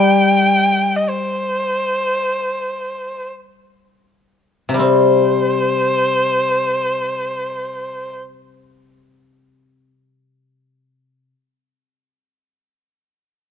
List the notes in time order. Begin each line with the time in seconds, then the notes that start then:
Already playing: G3 G5
0.96 D#5
1.09 C5
4.69 C3
4.74 G3
4.79 C4 C5